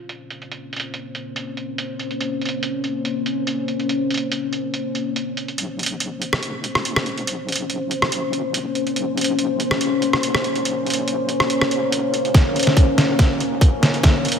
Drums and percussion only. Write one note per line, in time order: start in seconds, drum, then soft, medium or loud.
0.09 closed hi-hat medium
0.30 closed hi-hat soft
0.42 closed hi-hat soft
0.52 closed hi-hat medium
0.73 closed hi-hat soft
0.76 closed hi-hat medium
0.80 closed hi-hat medium
0.94 closed hi-hat medium
1.15 closed hi-hat medium
1.36 closed hi-hat medium
1.57 closed hi-hat soft
1.78 closed hi-hat medium
1.99 closed hi-hat soft
2.11 closed hi-hat soft
2.21 closed hi-hat medium
2.42 closed hi-hat soft
2.45 closed hi-hat medium
2.49 closed hi-hat medium
2.63 closed hi-hat medium
2.84 closed hi-hat soft
3.05 closed hi-hat medium
3.26 closed hi-hat medium
3.47 closed hi-hat medium
3.68 closed hi-hat soft
3.80 closed hi-hat soft
3.89 closed hi-hat medium
4.10 closed hi-hat soft
4.14 closed hi-hat medium
4.18 closed hi-hat medium
4.32 closed hi-hat medium
4.53 closed hi-hat soft
4.74 closed hi-hat medium
4.95 closed hi-hat soft
5.16 closed hi-hat medium
5.37 closed hi-hat soft
5.48 closed hi-hat soft
5.58 closed hi-hat medium
5.79 closed hi-hat medium
5.83 closed hi-hat medium
5.86 closed hi-hat medium
6.00 closed hi-hat medium
6.22 closed hi-hat medium
6.33 cross-stick medium
6.43 closed hi-hat medium
6.64 closed hi-hat medium
6.75 cross-stick medium
6.85 closed hi-hat medium
6.96 cross-stick medium
7.06 closed hi-hat soft
7.18 closed hi-hat soft
7.27 closed hi-hat medium
7.49 closed hi-hat medium
7.52 closed hi-hat medium
7.56 closed hi-hat medium
7.70 closed hi-hat medium
7.91 closed hi-hat medium
8.02 cross-stick medium
8.12 closed hi-hat medium
8.33 closed hi-hat medium
8.54 closed hi-hat medium
8.75 closed hi-hat medium
8.87 closed hi-hat soft
8.96 closed hi-hat medium
9.17 closed hi-hat soft
9.21 closed hi-hat medium
9.24 closed hi-hat medium
9.39 closed hi-hat medium
9.60 closed hi-hat medium
9.71 cross-stick medium
9.81 closed hi-hat medium
10.02 closed hi-hat medium
10.13 cross-stick medium
10.23 closed hi-hat medium
10.35 cross-stick medium
10.44 closed hi-hat medium
10.56 closed hi-hat soft
10.65 closed hi-hat medium
10.86 closed hi-hat soft
10.90 closed hi-hat medium
10.94 closed hi-hat medium
11.08 closed hi-hat medium
11.29 closed hi-hat medium
11.40 cross-stick medium
11.50 closed hi-hat medium
11.61 cross-stick medium
11.71 closed hi-hat soft
11.92 closed hi-hat medium
12.14 closed hi-hat soft
12.25 closed hi-hat soft
12.34 kick loud
12.34 snare medium
12.34 closed hi-hat medium
12.56 closed hi-hat soft
12.59 closed hi-hat medium
12.63 closed hi-hat medium
12.67 snare soft
12.77 kick loud
12.77 closed hi-hat medium
12.98 snare medium
12.98 closed hi-hat medium
13.19 kick loud
13.19 snare medium
13.19 closed hi-hat medium
13.40 closed hi-hat soft
13.61 kick medium
13.61 closed hi-hat medium
13.83 snare medium
13.83 closed hi-hat soft
13.94 closed hi-hat soft
14.03 kick loud
14.03 snare medium
14.03 closed hi-hat medium
14.25 closed hi-hat soft
14.28 closed hi-hat medium
14.32 closed hi-hat medium